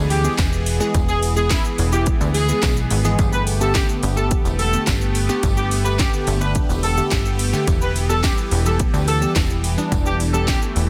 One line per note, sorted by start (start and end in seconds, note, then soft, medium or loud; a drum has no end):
0.00 0.28 D2 loud
0.00 0.12 E3 medium
0.00 3.15 E3 medium
0.00 0.12 G#3 medium
0.00 0.12 B3 medium
0.00 9.88 B3 medium
0.00 0.12 G#4 medium
0.00 3.15 G#4 medium
0.10 0.32 G4 medium
0.10 open hi-hat medium
0.10 tambourine medium
0.10 shaker soft
0.24 0.68 E3 medium
0.24 0.68 G#3 medium
0.24 0.68 B3 medium
0.24 0.68 G#4 medium
0.24 tambourine soft
0.24 shaker medium
0.38 0.81 E1 loud
0.38 kick loud
0.38 snare medium
0.38 clap loud
0.38 closed hi-hat medium
0.38 tambourine medium
0.38 shaker medium
0.53 shaker medium
0.66 open hi-hat medium
0.66 tambourine soft
0.66 shaker medium
0.80 1.24 E3 loud
0.80 1.24 G#3 loud
0.80 1.24 B3 medium
0.80 1.24 G#4 loud
0.80 shaker medium
0.94 1.58 E1 loud
0.94 kick loud
0.94 closed hi-hat medium
0.94 tambourine medium
0.94 shaker medium
1.08 1.20 G#4 medium
1.08 shaker medium
1.23 open hi-hat medium
1.23 tambourine medium
1.23 shaker medium
1.36 1.80 E3 medium
1.36 1.80 G#3 medium
1.36 1.80 B3 medium
1.36 1.48 G#4 medium
1.36 1.80 G#4 medium
1.36 shaker medium
1.50 1.62 E4 medium
1.50 kick loud
1.50 snare medium
1.50 clap loud
1.50 closed hi-hat medium
1.50 tambourine medium
1.50 shaker medium
1.65 shaker medium
1.78 2.10 E1 loud
1.78 open hi-hat medium
1.78 tambourine soft
1.78 shaker soft
1.92 2.36 E3 medium
1.92 2.36 G#3 medium
1.92 2.36 B3 medium
1.92 2.36 E4 medium
1.92 2.04 G4 medium
1.92 shaker medium
2.06 kick loud
2.06 closed hi-hat medium
2.06 shaker medium
2.21 2.53 D2 loud
2.21 tambourine soft
2.21 shaker medium
2.34 2.74 G#4 medium
2.34 open hi-hat medium
2.34 tambourine medium
2.34 shaker medium
2.48 2.92 E3 medium
2.48 2.92 G#3 medium
2.48 2.92 B3 medium
2.48 2.92 G#4 medium
2.48 tambourine soft
2.48 shaker medium
2.63 2.88 B1 medium
2.63 kick loud
2.63 snare medium
2.63 clap loud
2.63 closed hi-hat medium
2.63 tambourine medium
2.63 shaker medium
2.77 shaker medium
2.91 3.16 G#1 medium
2.91 open hi-hat medium
2.91 tambourine soft
2.91 shaker medium
3.04 3.19 E3 loud
3.04 3.19 G#3 medium
3.04 3.19 B3 medium
3.04 3.19 G#4 loud
3.04 shaker medium
3.19 3.82 G1 loud
3.19 7.64 A3 medium
3.19 10.89 G4 medium
3.19 kick loud
3.19 closed hi-hat medium
3.19 tambourine medium
3.19 shaker medium
3.33 3.44 B4 medium
3.33 shaker medium
3.47 open hi-hat medium
3.47 tambourine medium
3.47 shaker medium
3.61 4.04 D3 medium
3.61 4.04 A3 medium
3.61 4.04 B3 medium
3.61 4.05 G4 medium
3.61 3.72 A4 medium
3.61 tambourine soft
3.61 shaker medium
3.75 3.86 G4 medium
3.75 kick loud
3.75 snare medium
3.75 clap loud
3.75 closed hi-hat medium
3.75 tambourine medium
3.75 shaker medium
3.89 shaker medium
4.03 4.35 G1 loud
4.03 open hi-hat medium
4.03 tambourine soft
4.03 shaker soft
4.17 4.60 D3 medium
4.17 4.60 A3 medium
4.17 4.61 B3 medium
4.17 4.61 G4 medium
4.17 4.28 A4 medium
4.17 shaker medium
4.31 kick loud
4.31 closed hi-hat medium
4.31 shaker medium
4.45 4.77 E1 loud
4.45 tambourine soft
4.45 shaker medium
4.59 4.81 A4 medium
4.59 open hi-hat medium
4.59 tambourine medium
4.59 shaker medium
4.73 5.17 D3 medium
4.73 5.17 A3 medium
4.73 5.17 B3 medium
4.73 5.17 G4 medium
4.73 shaker medium
4.87 5.29 G1 loud
4.87 kick loud
4.87 snare medium
4.87 clap loud
4.87 closed hi-hat medium
4.87 tambourine medium
4.87 shaker medium
5.01 shaker medium
5.15 open hi-hat medium
5.15 tambourine soft
5.15 shaker medium
5.29 5.73 D3 loud
5.29 5.73 A3 loud
5.29 5.73 B3 loud
5.29 5.73 G4 loud
5.29 shaker medium
5.43 6.07 G1 loud
5.43 kick loud
5.43 closed hi-hat medium
5.43 tambourine medium
5.43 shaker medium
5.57 5.68 G4 medium
5.57 shaker medium
5.71 open hi-hat medium
5.71 tambourine medium
5.71 shaker medium
5.85 6.29 D3 medium
5.85 6.29 A3 medium
5.85 6.29 B3 medium
5.85 6.29 G4 medium
5.85 5.96 B4 medium
5.85 tambourine soft
5.85 shaker medium
5.99 6.10 G4 medium
5.99 kick loud
5.99 snare medium
5.99 clap loud
5.99 closed hi-hat medium
5.99 tambourine medium
5.99 shaker medium
6.13 shaker medium
6.27 6.59 G1 loud
6.27 open hi-hat medium
6.27 tambourine soft
6.27 shaker soft
6.41 6.85 D3 medium
6.41 6.85 A3 medium
6.41 6.85 B3 medium
6.41 6.85 D4 medium
6.41 6.52 B4 medium
6.41 tambourine soft
6.41 shaker medium
6.55 kick loud
6.55 closed hi-hat medium
6.55 shaker medium
6.69 7.01 E1 loud
6.69 tambourine soft
6.69 shaker soft
6.83 7.05 A4 medium
6.83 open hi-hat medium
6.83 tambourine medium
6.83 shaker medium
6.97 7.41 D3 medium
6.97 7.41 A3 medium
6.97 7.41 B3 medium
6.97 7.41 G4 medium
6.97 tambourine soft
6.97 shaker medium
7.11 7.54 G1 medium
7.11 kick loud
7.11 snare medium
7.11 clap loud
7.11 closed hi-hat medium
7.11 tambourine medium
7.11 shaker medium
7.25 shaker medium
7.39 open hi-hat medium
7.39 tambourine soft
7.39 shaker medium
7.53 7.67 D3 loud
7.53 7.67 A3 loud
7.53 7.67 B3 loud
7.53 7.67 G4 loud
7.53 tambourine soft
7.53 shaker medium
7.67 8.31 E1 loud
7.67 10.89 E3 medium
7.67 kick loud
7.67 closed hi-hat medium
7.67 tambourine medium
7.67 shaker medium
7.81 7.93 B4 medium
7.81 shaker medium
7.96 open hi-hat medium
7.96 tambourine medium
7.96 shaker medium
8.09 8.53 E3 medium
8.09 8.53 G3 medium
8.09 8.53 B3 medium
8.09 8.53 G4 medium
8.09 8.21 A4 medium
8.09 tambourine soft
8.09 shaker medium
8.24 8.35 G4 medium
8.24 kick loud
8.24 snare medium
8.24 clap loud
8.24 closed hi-hat medium
8.24 tambourine medium
8.24 shaker medium
8.38 shaker medium
8.51 8.83 E1 loud
8.51 open hi-hat medium
8.51 tambourine medium
8.51 shaker soft
8.65 9.09 E3 medium
8.65 9.09 G3 medium
8.65 9.09 B3 medium
8.65 9.09 G4 medium
8.65 8.77 A4 medium
8.65 tambourine soft
8.65 shaker medium
8.80 kick loud
8.80 closed hi-hat medium
8.80 shaker medium
8.94 9.25 D2 loud
8.94 tambourine soft
8.94 shaker medium
9.08 9.30 A4 medium
9.08 open hi-hat medium
9.08 tambourine medium
9.08 shaker medium
9.22 9.65 E3 medium
9.22 9.65 G3 medium
9.22 9.65 B3 medium
9.22 9.65 G4 medium
9.22 shaker medium
9.36 9.78 E1 loud
9.36 kick loud
9.36 snare medium
9.36 clap loud
9.36 closed hi-hat medium
9.36 tambourine medium
9.36 shaker medium
9.50 shaker medium
9.64 open hi-hat medium
9.64 tambourine soft
9.64 shaker medium
9.77 10.21 E3 loud
9.77 10.21 G3 loud
9.77 10.21 B3 loud
9.77 10.21 D4 loud
9.77 shaker medium
9.92 10.55 E1 loud
9.92 10.89 A3 medium
9.92 kick loud
9.92 closed hi-hat medium
9.92 tambourine medium
9.92 shaker medium
10.06 10.17 G4 medium
10.06 shaker medium
10.20 open hi-hat medium
10.20 tambourine medium
10.20 shaker medium
10.34 10.77 E3 medium
10.34 10.77 G3 medium
10.34 10.77 B3 medium
10.34 10.78 G4 medium
10.34 10.45 A4 medium
10.34 shaker medium
10.47 10.59 G4 medium
10.47 kick loud
10.47 snare medium
10.47 clap loud
10.47 closed hi-hat medium
10.47 tambourine medium
10.47 shaker medium
10.62 shaker medium
10.76 10.89 E1 loud
10.76 open hi-hat medium
10.76 tambourine soft
10.76 shaker soft